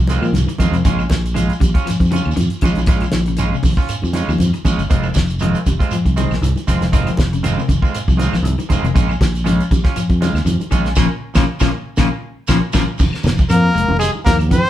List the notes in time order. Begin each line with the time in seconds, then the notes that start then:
Already playing: C2 F3
0.07 D#3 G#3 C4 F4, closed hi-hat, high conga, shekere
0.22 A#2 F3, claves, shekere
0.33 C2, snare, closed hi-hat, high conga, low conga, shekere
0.46 D#3, closed hi-hat, high conga, shekere
0.58 F2 D#3 G#3 C4 F4, kick, closed hi-hat, low conga, claves, shekere
0.72 F2 C3, closed hi-hat, shekere
0.85 A#1 C#3 G#3 C#4 F4, kick, closed hi-hat, shekere
0.99 claves, shekere
1.10 A#1 F3, kick, snare, closed hi-hat, high conga, shekere
1.26 closed hi-hat, shekere
1.34 F3 G#3 F4, closed hi-hat, high conga, low conga, claves, shekere
1.50 closed hi-hat, shekere
1.60 A#1 G3, kick, closed hi-hat, low conga, shekere
1.74 C#4 F4, kick, closed hi-hat, shekere
1.86 F3, muted fingered electric bass stroke, snare, closed hi-hat, claves
1.90 shekere
2.00 F2, kick, closed hi-hat, high conga
2.04 shekere
2.11 C#3 C#4 F4, muted clean electric guitar stroke, closed hi-hat, high conga
2.16 shekere
2.25 D#2, claves
2.31 shekere
2.36 F2 D#3, closed hi-hat, high conga, low conga
2.40 shekere
2.50 closed hi-hat, shekere
2.61 A#1 F3 G#3 C#4 F4, kick, closed hi-hat, low conga, claves, shekere
2.75 A#1, closed hi-hat, high conga, shekere
2.86 D#3 G#3 C#4 F4, kick, closed hi-hat, shekere
3.00 F3, closed hi-hat, claves, shekere
3.12 A#1, snare, closed hi-hat, high conga, shekere
3.26 C#3, closed hi-hat, shekere
3.37 G#3 C#4 F4, closed hi-hat, high conga, low conga, claves, shekere
3.53 C3, shekere
3.63 A#1, kick, open hi-hat, low conga, shekere
3.77 D#3 C#4 F4, kick, shekere
3.89 muted fingered electric bass stroke, closed hi-hat, claves, shekere
4.02 F2 F3, high conga, shekere
4.13 G#3 C#4 F4, snare, closed hi-hat, high conga, shekere
4.28 D#2 F3, claves, shekere
4.38 F2, closed hi-hat, high conga, low conga, shekere
4.54 D#3, closed hi-hat, shekere
4.65 A#1 G#3 C#4 F4, kick, closed hi-hat, low conga, claves, shekere
4.78 G1 C#3, closed hi-hat, shekere
4.90 F1 C3 D#3 G#3 C4 F4, kick, closed hi-hat, shekere
5.03 high conga, claves, shekere
5.14 F1 F3, kick, snare, closed hi-hat, high conga, shekere
5.27 closed hi-hat, shekere
5.39 D#3 F3 G#3 C4 F4, closed hi-hat, high conga, low conga, claves, shekere
5.54 closed hi-hat, shekere
5.66 F1 G3, kick, closed hi-hat, low conga, shekere
5.79 G#3 C4 F4, kick, closed hi-hat, shekere
5.91 F3, muted fingered electric bass stroke, closed hi-hat, claves, shekere
6.05 C2, kick, closed hi-hat, high conga, shekere
6.16 C3 D#3 G#3 C4, muted clean electric guitar stroke, closed hi-hat, high conga, shekere
6.31 A#1, snare, claves, shekere
6.42 C2 D#3, closed hi-hat, high conga, shekere
6.56 closed hi-hat, high conga, shekere
6.67 F1 F3 G#3 C4 F4, muted clean electric guitar stroke, kick, closed hi-hat, low conga, claves, shekere
6.81 F1, snare, closed hi-hat, high conga, shekere
6.92 D#3 G#3 C4 F4, kick, closed hi-hat, shekere
7.07 F3, closed hi-hat, claves, shekere
7.17 F1, kick, snare, closed hi-hat, high conga, shekere
7.33 C#3, closed hi-hat, shekere
7.43 D#3 G#3 C4 F4, closed hi-hat, high conga, low conga, claves, shekere
7.58 C3, shekere
7.68 F1, kick, closed hi-hat, low conga, shekere
7.82 D#3 G#3 C4 F4, kick, shekere
7.95 muted fingered electric bass stroke, closed hi-hat, claves, shekere
8.08 C2 F3, kick, shekere
8.17 D#3 G#3 C4 F4, snare, closed hi-hat, high conga
8.21 shekere
8.33 A#1 F3, snare, claves, shekere
8.43 C2, closed hi-hat, high conga, shekere
8.58 D#3, closed hi-hat, high conga, shekere
8.69 F1 D#3 G#3 C4 F4, kick, closed hi-hat, low conga, claves, shekere
8.82 F1 C3, closed hi-hat, high conga, shekere
8.94 A#1 C#3 G#3 C#4 F4, kick, closed hi-hat, shekere
9.09 high conga, claves, shekere
9.20 A#1 F3, kick, snare, closed hi-hat, high conga, shekere
9.35 closed hi-hat, shekere
9.44 F3 G#3 C#4 F4, closed hi-hat, high conga, low conga, claves, shekere
9.60 closed hi-hat, shekere
9.71 A#1 G3, kick, closed hi-hat, low conga, shekere
9.84 C#4 F4, kick, snare, closed hi-hat, shekere
9.96 F3, muted fingered electric bass stroke, closed hi-hat, claves, shekere
10.09 F2, kick, closed hi-hat, shekere
10.21 C#3 G#3 F4, snare, closed hi-hat, high conga, shekere
10.34 D#2, snare, claves, shekere
10.45 F2 D#3, closed hi-hat, high conga, low conga, shekere
10.60 closed hi-hat, high conga, shekere
10.71 A#1 F3 G#3 C#4 F4, kick, closed hi-hat, low conga, claves, shekere
10.83 A#1, snare, closed hi-hat, shekere
10.96 A#1 A#2 C#3 F3 A#3 C#4 F4, kick, snare, high conga, claves, shekere
11.35 A#1 A#2 C#3 F3 A#3 C#4 F4, kick, snare, high conga, claves, shekere
11.60 A#1 A#2 C#3 F3 A#3 C#4 F4, kick, snare, high conga, claves, shekere
11.97 A#1 A#2 C#3 F3 A#3 C#4 F4, kick, snare, high conga, claves, shekere
12.48 A#1 A#2 C#3 F3 A#3 C#4 F4, kick, snare, high conga, claves, shekere
12.73 A#1 A#2 C#3 F3 A#3 C#4 F4, kick, snare, high conga, claves, shekere
12.98 F1, muted clean electric guitar stroke, kick, crash, high conga, low conga, shekere
13.13 snare, claves
13.23 F1 D#3, snare, closed hi-hat, high conga, shekere
13.38 kick, shekere
13.49 F2 F3 A#3 A#4, closed hi-hat, high conga, claves, shekere
13.75 F1 G#3, closed hi-hat, shekere
13.88 F1, high conga, low conga
13.99 G3 G#3 G#4, snare, closed hi-hat, high conga, claves, shekere
14.15 high conga
14.25 D#2 F3 A#3 A#4, kick, snare, closed hi-hat, high conga, shekere
14.39 closed hi-hat, claves, shekere
14.48 F2 D#3 C4 C5, kick, closed hi-hat, high conga, low conga, shekere